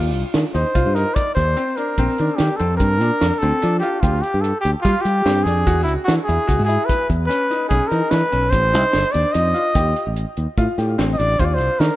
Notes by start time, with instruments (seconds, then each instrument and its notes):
Already playing: fingered electric bass D#2, grand piano F4
0.13 fingered electric bass C2, closed hi-hat
0.34 fingered electric bass D#3, snare, closed hi-hat
0.54 fingered electric bass D#2, grand piano D#4, trumpet C5, closed hi-hat
0.75 fingered electric bass C2, grand piano F4, kick, closed hi-hat
0.86 fingered electric bass G2
0.95 grand piano D#4, trumpet A#4, snare, closed hi-hat
1.15 trumpet D5, kick, closed hi-hat
1.35 fingered electric bass D#2, trumpet C5, kick, snare, closed hi-hat
1.57 grand piano C4, closed hi-hat
1.77 grand piano D4, trumpet A#4, closed hi-hat
1.98 fingered electric bass A#1, grand piano C4, kick, closed hi-hat
2.18 fingered electric bass D#3, grand piano D4, closed hi-hat
2.37 fingered electric bass D#3, trumpet G4, snare, closed hi-hat
2.57 fingered electric bass F2, grand piano C4, trumpet A4, closed hi-hat
2.77 fingered electric bass G2, trumpet A#4, kick, closed hi-hat
3.01 fingered electric bass A#2, grand piano D4, snare, closed hi-hat
3.21 fingered electric bass F2, snare, closed hi-hat
3.38 grand piano C4, trumpet A4, snare, closed hi-hat
3.43 fingered electric bass D2
3.62 fingered electric bass F3, grand piano D4, closed hi-hat
3.80 grand piano F4, trumpet G4, closed hi-hat
4.00 fingered electric bass D2, trumpet F4, grand piano G4, kick, closed hi-hat
4.22 trumpet G4, closed hi-hat
4.34 fingered electric bass G2
4.42 trumpet A4, closed hi-hat
4.61 trumpet G4
4.65 fingered electric bass D2, closed hi-hat
4.81 fingered electric bass G3, trumpet F4, kick, closed hi-hat
4.85 grand piano F4
5.01 fingered electric bass G3, trumpet G4, closed hi-hat
5.06 grand piano G4
5.26 fingered electric bass G2, grand piano C4, snare, closed hi-hat
5.44 fingered electric bass F2, grand piano D4, trumpet G#4, closed hi-hat
5.67 fingered electric bass E2, grand piano F#4, kick, closed hi-hat
5.84 fingered electric bass C#2, trumpet E4
5.88 closed hi-hat
6.05 fingered electric bass E3, trumpet F#4, snare, closed hi-hat
6.24 grand piano E4, trumpet G#4
6.29 fingered electric bass E2, closed hi-hat
6.47 fingered electric bass C#2, grand piano F#4, kick, closed hi-hat
6.59 fingered electric bass G#2
6.65 grand piano E4, trumpet G#4
6.69 closed hi-hat
6.86 trumpet B4, kick
6.90 closed hi-hat
7.10 fingered electric bass E2, kick, closed hi-hat
7.27 grand piano C#4, trumpet B4, snare, closed hi-hat
7.50 grand piano D#4, snare, closed hi-hat
7.69 fingered electric bass B1, grand piano C#4, trumpet G#4, kick, closed hi-hat
7.88 fingered electric bass E3, grand piano D#4, trumpet A#4, closed hi-hat
8.10 fingered electric bass E3, trumpet B4, snare, closed hi-hat
8.32 fingered electric bass B1, grand piano C#4, closed hi-hat
8.50 fingered electric bass A1, trumpet C5, kick, closed hi-hat
8.73 fingered electric bass C2, grand piano D#4, closed hi-hat
8.93 fingered electric bass G1, snare, closed hi-hat
9.12 fingered electric bass D#2, grand piano D4, trumpet D5, closed hi-hat
9.32 fingered electric bass F2, grand piano D#4, trumpet D#5, closed hi-hat
9.54 grand piano F4, closed hi-hat
9.75 fingered electric bass D#2, grand piano G4, kick, closed hi-hat
9.96 closed hi-hat
10.07 fingered electric bass A1
10.16 closed hi-hat
10.37 fingered electric bass D#2, closed hi-hat
10.57 fingered electric bass A2, grand piano F4, kick, closed hi-hat
10.78 fingered electric bass A2, grand piano G4, snare, closed hi-hat
10.98 fingered electric bass A1, grand piano C4, snare, closed hi-hat
11.13 trumpet D#5
11.18 fingered electric bass A1, grand piano D4, trumpet D5, closed hi-hat
11.40 fingered electric bass D#2, grand piano F4, trumpet C5, kick, closed hi-hat
11.45 trumpet D5
11.54 trumpet C5
11.60 fingered electric bass C2, closed hi-hat
11.80 fingered electric bass D#3, trumpet A#4, snare, closed hi-hat